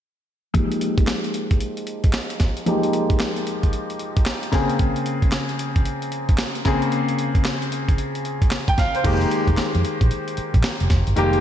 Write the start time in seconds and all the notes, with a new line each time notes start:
0.54 F3 G#3 A#3 D#4 G4, kick, closed hi-hat
0.72 closed hi-hat
0.81 closed hi-hat
0.98 kick, closed hi-hat
1.07 snare, clap, closed hi-hat
1.24 closed hi-hat
1.34 closed hi-hat
1.51 kick, closed hi-hat
1.61 closed hi-hat
1.77 closed hi-hat
1.87 closed hi-hat
2.04 kick, closed hi-hat
2.13 snare, clap, closed hi-hat
2.30 closed hi-hat
2.40 kick, snare, closed hi-hat
2.57 closed hi-hat
2.66 F3 G#3 A#3 D#4 G4, closed hi-hat
2.83 closed hi-hat
2.93 closed hi-hat
3.10 kick, closed hi-hat
3.19 snare, clap, closed hi-hat
3.37 closed hi-hat
3.47 closed hi-hat
3.63 kick, closed hi-hat
3.73 closed hi-hat
3.90 closed hi-hat
3.99 closed hi-hat
4.17 kick, closed hi-hat
4.26 snare, clap, closed hi-hat
4.43 closed hi-hat
4.52 C#3 A#3 C4 G#4, kick, snare, closed hi-hat
4.70 closed hi-hat
4.79 kick, closed hi-hat
4.96 closed hi-hat
5.06 closed hi-hat
5.22 kick, closed hi-hat
5.32 snare, clap, closed hi-hat
5.49 closed hi-hat
5.59 closed hi-hat
5.76 kick, closed hi-hat
5.85 closed hi-hat
6.02 closed hi-hat
6.12 closed hi-hat
6.29 kick, closed hi-hat
6.38 snare, clap, closed hi-hat
6.55 closed hi-hat
6.65 C#3 A#3 C4 G#4, kick, snare, closed hi-hat
6.82 closed hi-hat
6.92 closed hi-hat
7.09 closed hi-hat
7.19 closed hi-hat
7.35 kick, closed hi-hat
7.44 snare, clap, closed hi-hat
7.62 closed hi-hat
7.72 closed hi-hat
7.88 kick, closed hi-hat
7.98 closed hi-hat
8.15 closed hi-hat
8.25 closed hi-hat
8.42 kick, closed hi-hat
8.51 snare, clap, closed hi-hat
8.68 G5, kick, closed hi-hat
8.78 F5, kick, snare, closed hi-hat
8.95 C5, closed hi-hat
9.04 F1 D#3 G#3 A#3 G4, kick, closed hi-hat, crash
9.21 closed hi-hat
9.31 closed hi-hat
9.47 F1, kick, closed hi-hat
9.57 muted fingered electric bass stroke, snare, clap, closed hi-hat
9.75 F2, closed hi-hat
9.85 closed hi-hat
10.01 A#1, kick, closed hi-hat
10.11 closed hi-hat
10.28 closed hi-hat
10.37 muted fingered electric bass stroke, closed hi-hat
10.54 A#1, kick, closed hi-hat
10.63 snare, clap, closed hi-hat
10.80 F1, closed hi-hat
10.90 F1, kick, snare, closed hi-hat
11.07 G1, closed hi-hat
11.16 F1 D#3 G3 A#3 G4, closed hi-hat
11.23 G#3
11.33 closed hi-hat